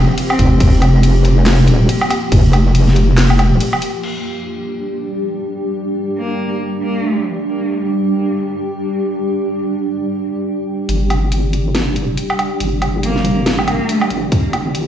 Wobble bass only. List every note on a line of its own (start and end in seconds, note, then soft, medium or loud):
0.39 0.59 F1 medium
0.60 1.69 F1 loud
1.68 1.88 D#1 medium
2.32 3.53 F1 loud
3.52 3.61 D#1 medium
10.89 11.98 G1 loud
11.96 12.16 F1 medium
12.60 13.66 G1 loud
13.68 13.79 G1 medium
14.11 14.31 G1 medium
14.32 14.87 G1 loud